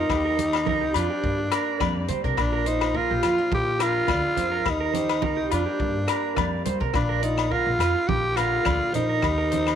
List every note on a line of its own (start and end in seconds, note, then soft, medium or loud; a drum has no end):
0.00 0.12 A#3 soft
0.00 0.97 D#4 medium
0.10 0.81 D#2 medium
0.10 0.65 D#3 medium
0.10 1.24 A#3 medium
0.10 0.37 G4 medium
0.10 muted nylon-string guitar stroke medium
0.10 kick medium
0.10 cross-stick medium
0.10 muted conga soft
0.10 low agogo medium
0.25 0.37 A#4 medium
0.38 1.20 G4 medium
0.38 muted clean electric guitar stroke medium
0.38 closed hi-hat soft
0.38 muted conga soft
0.38 high conga medium
0.53 cross-stick medium
0.53 low agogo medium
0.66 0.94 D#3 medium
0.66 0.81 A#4 medium
0.66 kick medium
0.66 high conga medium
0.66 low conga medium
0.81 0.92 C2 medium
0.81 0.94 G4 medium
0.94 1.07 F2 medium
0.94 1.23 F3 medium
0.94 2.09 D4 medium
0.94 1.09 F4 medium
0.94 closed hi-hat soft
0.94 muted conga soft
0.94 low agogo medium
1.10 1.37 G4 medium
1.24 2.34 G2 medium
1.24 1.47 G2 medium
1.24 1.80 A#3 medium
1.24 kick medium
1.24 muted conga soft
1.52 1.79 A#4 medium
1.52 muted nylon-string guitar stroke medium
1.52 cross-stick medium
1.52 closed hi-hat medium
1.52 low agogo medium
1.80 2.04 F2 loud
1.80 2.34 G3 medium
1.80 2.37 A#3 medium
1.80 2.07 D5 medium
1.80 kick medium
1.80 cross-stick medium
1.80 high conga medium
1.80 low agogo medium
2.08 2.21 G3 medium
2.08 2.24 C4 medium
2.08 2.23 C5 medium
2.08 closed hi-hat soft
2.08 low conga medium
2.24 2.35 C3 medium
2.24 2.37 D4 soft
2.24 2.37 A#4 medium
2.24 kick medium
2.37 2.96 A#1 medium
2.37 3.80 A#2 medium
2.37 2.94 A#3 medium
2.37 2.69 D4 medium
2.37 kick medium
2.37 cross-stick medium
2.37 muted conga soft
2.37 low agogo medium
2.53 2.65 A#4 medium
2.66 2.98 D#4 medium
2.66 3.50 F4 medium
2.66 2.93 C5 medium
2.66 closed hi-hat soft
2.66 muted conga soft
2.81 cross-stick medium
2.81 low agogo medium
2.94 4.63 F3 medium
2.94 4.07 A#3 medium
2.94 3.53 F4 medium
2.94 3.09 A#4 medium
2.94 kick medium
3.10 3.21 A#1 medium
3.10 3.23 G4 medium
3.23 3.35 F2 medium
3.23 3.38 C4 medium
3.23 3.38 F4 medium
3.23 cross-stick medium
3.23 closed hi-hat soft
3.23 low agogo medium
3.38 3.78 D4 soft
3.38 muted clean electric guitar stroke medium
3.51 3.98 A#1 medium
3.51 4.66 F4 medium
3.51 3.84 G4 medium
3.51 kick medium
3.51 muted conga soft
3.51 high conga medium
3.79 4.65 F2 medium
3.79 4.35 D4 medium
3.79 4.71 F4 loud
3.79 4.07 A#4 medium
3.79 cross-stick medium
3.79 closed hi-hat soft
3.79 low agogo medium
4.07 4.22 D2 medium
4.07 4.66 A#3 medium
4.07 4.36 D5 medium
4.07 kick medium
4.07 cross-stick medium
4.07 high conga medium
4.07 low agogo medium
4.37 4.60 F2 medium
4.37 4.62 D4 medium
4.37 4.51 C5 medium
4.37 closed hi-hat soft
4.37 high conga medium
4.51 4.65 A#4 medium
4.66 5.39 D#2 medium
4.66 5.81 A#3 medium
4.66 muted nylon-string guitar stroke medium
4.66 kick medium
4.66 cross-stick medium
4.66 muted conga soft
4.66 low agogo medium
4.70 5.53 D#4 medium
4.80 4.93 A#4 medium
4.93 5.77 G4 medium
4.93 5.21 C5 medium
4.93 closed hi-hat soft
4.93 muted conga soft
4.93 high conga medium
5.09 cross-stick medium
5.09 low agogo medium
5.22 5.51 D#3 medium
5.22 5.37 A#4 medium
5.22 kick medium
5.22 high conga medium
5.22 low conga medium
5.37 5.49 C2 medium
5.37 5.50 G4 medium
5.51 5.64 F2 medium
5.51 5.80 F3 medium
5.51 6.63 D4 medium
5.51 5.66 F4 medium
5.51 closed hi-hat soft
5.51 muted conga soft
5.51 low agogo medium
5.66 5.94 G4 medium
5.80 6.03 G2 medium
5.80 6.92 G2 medium
5.80 6.37 A#3 soft
5.80 kick medium
5.80 muted conga soft
6.08 6.35 A#4 medium
6.08 7.23 A#4 medium
6.08 cross-stick medium
6.08 closed hi-hat soft
6.08 low agogo medium
6.36 6.61 F2 medium
6.36 6.91 G3 medium
6.36 9.24 A#3 medium
6.36 6.64 D5 medium
6.36 kick medium
6.36 cross-stick medium
6.36 high conga medium
6.36 low agogo medium
6.65 6.78 G3 medium
6.65 6.80 C4 soft
6.65 6.80 C5 medium
6.65 closed hi-hat soft
6.65 low conga medium
6.80 6.92 C3 medium
6.80 6.94 D4 soft
6.80 6.94 A#4 medium
6.80 kick medium
6.94 7.54 A#1 medium
6.94 7.51 A#2 medium
6.94 7.25 D4 medium
6.94 8.08 F4 medium
6.94 kick medium
6.94 cross-stick medium
6.94 muted conga soft
6.94 low agogo medium
7.09 7.22 A#4 medium
7.22 7.53 D#4 medium
7.22 8.95 A#4 medium
7.22 7.50 D5 medium
7.22 closed hi-hat soft
7.22 muted conga soft
7.38 cross-stick medium
7.38 low agogo medium
7.50 7.80 D3 medium
7.50 8.10 F4 medium
7.50 7.66 A#4 medium
7.50 kick medium
7.66 7.77 A#1 medium
7.79 7.92 F2 medium
7.79 7.95 F4 medium
7.79 cross-stick medium
7.79 closed hi-hat soft
7.79 muted conga soft
7.79 low agogo medium
7.95 muted clean electric guitar stroke medium
8.08 8.56 A#1 medium
8.08 9.20 F4 medium
8.08 8.38 G4 medium
8.08 kick medium
8.08 muted conga soft
8.08 high conga medium
8.37 9.20 A#2 medium
8.37 8.66 D3 medium
8.37 8.94 F4 medium
8.37 8.64 A#4 medium
8.37 cross-stick medium
8.37 closed hi-hat soft
8.37 low agogo medium
8.65 8.78 D2 medium
8.65 9.21 D3 soft
8.65 8.93 D5 medium
8.65 kick medium
8.65 cross-stick medium
8.65 high conga medium
8.65 low agogo medium
8.93 9.17 A#1 medium
8.93 9.75 D#4 loud
8.93 9.25 A#4 medium
8.93 9.09 C5 medium
8.93 closed hi-hat soft
8.93 high conga medium
9.09 9.22 A#4 medium
9.22 9.75 D#2 medium
9.22 9.75 D#4 medium
9.22 9.75 G4 medium
9.22 9.52 A#4 medium
9.22 muted nylon-string guitar stroke medium
9.22 kick medium
9.22 cross-stick medium
9.22 muted conga soft
9.22 low agogo medium
9.38 9.51 A#4 medium
9.51 9.75 A#4 medium
9.51 9.75 C5 medium
9.51 closed hi-hat soft
9.51 high conga medium
9.67 cross-stick medium
9.67 low agogo medium